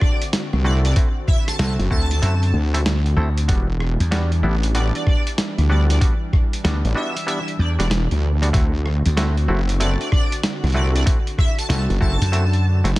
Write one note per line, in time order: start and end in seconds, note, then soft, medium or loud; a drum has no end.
0.00 3.45 D3 medium
0.00 0.62 A3 medium
0.00 0.62 C4 medium
0.00 3.45 C4 medium
0.00 0.62 E4 medium
0.00 0.62 F#4 loud
0.00 3.45 F#4 medium
0.00 0.22 D5 medium
0.00 kick loud
0.00 cross-stick medium
0.22 closed hi-hat medium
0.33 snare loud
0.33 closed hi-hat medium
0.53 0.94 C2 loud
0.53 cross-stick soft
0.64 0.93 A3 loud
0.64 0.93 C4 medium
0.64 0.93 E4 medium
0.64 0.93 F#4 loud
0.64 0.77 D5 medium
0.85 0.92 D5 medium
0.85 closed hi-hat medium
0.96 1.08 A3 medium
0.96 1.08 C4 medium
0.96 1.08 E4 medium
0.96 1.08 F#4 medium
0.96 kick loud
0.96 closed hi-hat medium
1.27 1.44 E5 medium
1.27 kick loud
1.48 1.55 A5 medium
1.48 cross-stick medium
1.48 closed hi-hat medium
1.59 1.76 C2 loud
1.59 1.88 A3 medium
1.59 1.88 C4 medium
1.59 1.88 E4 medium
1.59 1.88 F#4 medium
1.59 1.72 A5 medium
1.59 snare loud
1.59 closed hi-hat medium
1.79 1.89 F#1 medium
1.79 closed hi-hat soft
1.91 2.21 D2 loud
1.91 2.10 A3 medium
1.91 2.10 C4 medium
1.91 2.10 E4 medium
1.91 2.10 F#4 loud
1.91 2.54 A5 loud
1.91 kick medium
2.11 closed hi-hat medium
2.22 2.52 F#2 medium
2.22 2.34 A3 loud
2.22 2.34 C4 medium
2.22 2.34 E4 medium
2.22 2.34 F#4 loud
2.22 closed hi-hat medium
2.43 closed hi-hat soft
2.54 3.15 D2 loud
2.74 2.81 A3 medium
2.74 2.81 C4 medium
2.74 2.81 E4 medium
2.74 2.81 A4 loud
2.74 cross-stick soft
2.74 closed hi-hat medium
2.86 snare loud
2.86 closed hi-hat medium
3.06 closed hi-hat soft
3.17 3.47 D2 medium
3.17 3.29 A3 medium
3.17 3.29 C4 medium
3.17 3.29 E4 medium
3.17 3.29 A4 loud
3.38 closed hi-hat medium
3.48 3.97 E1 loud
3.48 8.50 E3 medium
3.48 3.68 G3 medium
3.48 8.50 G3 medium
3.48 3.68 B3 medium
3.48 3.68 D4 medium
3.48 8.50 D4 medium
3.48 3.68 F#4 loud
3.48 kick loud
3.48 closed hi-hat medium
3.80 cross-stick medium
4.00 4.41 E2 loud
4.00 closed hi-hat medium
4.11 4.31 G3 loud
4.11 4.31 B3 medium
4.11 4.31 D4 medium
4.11 4.31 F#4 loud
4.11 snare loud
4.11 closed hi-hat medium
4.32 closed hi-hat soft
4.43 4.92 A1 loud
4.43 4.55 G3 medium
4.43 4.55 B3 medium
4.43 4.55 D4 medium
4.43 4.55 E4 loud
4.63 closed hi-hat soft
4.75 5.67 G3 medium
4.75 5.67 B3 medium
4.75 5.67 D4 medium
4.75 5.67 F#4 loud
4.75 4.88 D5 medium
4.75 closed hi-hat medium
4.95 5.03 D5 medium
4.95 closed hi-hat soft
5.07 5.28 D5 loud
5.07 kick loud
5.07 cross-stick medium
5.27 closed hi-hat medium
5.38 snare loud
5.38 closed hi-hat medium
5.58 5.99 D2 loud
5.58 cross-stick soft
5.58 closed hi-hat soft
5.69 5.99 G3 loud
5.69 5.98 B3 medium
5.69 5.98 D4 medium
5.69 5.99 F#4 loud
5.69 5.83 D5 medium
5.90 5.97 D5 medium
5.90 closed hi-hat medium
6.01 6.13 G3 medium
6.01 6.13 B3 medium
6.01 6.13 D4 medium
6.01 6.13 F#4 medium
6.01 kick loud
6.01 closed hi-hat medium
6.33 kick loud
6.33 cross-stick medium
6.53 closed hi-hat medium
6.64 6.81 D2 loud
6.64 6.93 G3 medium
6.64 6.93 B3 medium
6.64 6.93 D4 medium
6.64 6.93 F#4 medium
6.64 snare loud
6.64 closed hi-hat medium
6.85 6.94 A1 loud
6.85 closed hi-hat soft
6.95 7.15 G3 loud
6.95 7.15 B3 medium
6.95 7.15 D4 medium
6.95 7.15 F#4 loud
6.95 7.25 E5 loud
7.17 closed hi-hat medium
7.27 7.39 G3 medium
7.27 7.39 B3 medium
7.27 7.39 D4 medium
7.27 7.39 E4 loud
7.27 7.49 E5 loud
7.27 closed hi-hat medium
7.48 closed hi-hat soft
7.59 7.76 E2 loud
7.59 7.72 D5 loud
7.79 8.08 E1 loud
7.79 7.86 G3 medium
7.79 7.86 B3 medium
7.79 7.86 D4 medium
7.79 7.86 F#4 medium
7.79 7.86 D5 medium
7.79 cross-stick soft
7.79 closed hi-hat medium
7.91 snare loud
7.91 closed hi-hat medium
8.11 8.52 D2 loud
8.11 closed hi-hat soft
8.42 8.49 G3 medium
8.42 8.49 B3 medium
8.42 8.49 D4 medium
8.42 8.49 F#4 loud
8.42 closed hi-hat medium
8.53 9.03 D2 loud
8.53 12.99 D3 medium
8.53 8.73 A3 loud
8.53 8.73 C4 medium
8.53 11.04 C4 medium
8.53 8.73 E4 medium
8.53 8.73 F#4 loud
8.53 12.99 F#4 medium
8.53 kick loud
8.53 closed hi-hat medium
8.86 cross-stick medium
9.06 9.47 D2 loud
9.06 closed hi-hat medium
9.17 9.36 A3 loud
9.17 9.36 C4 medium
9.17 9.36 E4 medium
9.17 9.36 F#4 loud
9.17 snare loud
9.17 closed hi-hat medium
9.37 closed hi-hat soft
9.48 9.97 F#1 loud
9.48 9.61 A3 medium
9.48 9.61 C4 medium
9.48 9.61 E4 medium
9.48 9.61 F#4 loud
9.69 closed hi-hat medium
9.80 10.72 A3 medium
9.80 10.72 C4 medium
9.80 10.72 E4 medium
9.80 10.72 F#4 loud
9.80 9.93 D5 medium
9.80 closed hi-hat medium
10.01 10.08 D5 medium
10.01 closed hi-hat soft
10.11 10.33 D5 loud
10.11 kick loud
10.11 cross-stick medium
10.32 closed hi-hat medium
10.43 snare loud
10.43 closed hi-hat medium
10.63 11.05 C2 loud
10.63 cross-stick soft
10.63 closed hi-hat soft
10.67 closed hi-hat soft
10.70 closed hi-hat soft
10.73 11.04 A3 loud
10.73 11.04 C4 medium
10.73 11.04 E4 medium
10.73 11.04 F#4 loud
10.73 10.88 D5 medium
10.73 closed hi-hat soft
10.95 11.02 D5 medium
10.95 closed hi-hat medium
11.06 11.18 A3 medium
11.06 11.18 C4 medium
11.06 12.99 D4 medium
11.06 11.19 E4 medium
11.06 11.19 F#4 medium
11.06 kick loud
11.06 closed hi-hat medium
11.27 closed hi-hat soft
11.38 11.54 E5 loud
11.38 kick loud
11.38 cross-stick medium
11.58 11.66 A5 medium
11.58 closed hi-hat medium
11.69 11.87 C2 loud
11.69 11.98 A3 medium
11.69 11.98 C4 medium
11.69 11.98 E4 medium
11.69 11.98 F#4 medium
11.69 11.83 A5 medium
11.69 snare loud
11.69 closed hi-hat medium
11.90 11.99 F#1 loud
11.90 closed hi-hat soft
12.01 12.18 F#1 loud
12.01 12.20 A3 loud
12.01 12.20 C4 medium
12.01 12.21 E4 medium
12.01 12.20 F#4 loud
12.01 12.64 A5 loud
12.01 kick medium
12.21 12.81 F#2 loud
12.21 closed hi-hat medium
12.32 12.45 A3 loud
12.32 12.45 C4 medium
12.32 12.45 E4 medium
12.32 12.45 F#4 loud
12.32 closed hi-hat medium
12.53 closed hi-hat soft
12.84 12.99 F#1 loud
12.84 12.91 A3 medium
12.84 12.91 C4 medium
12.84 12.91 E4 medium
12.84 12.91 F#4 medium
12.84 cross-stick soft
12.84 closed hi-hat medium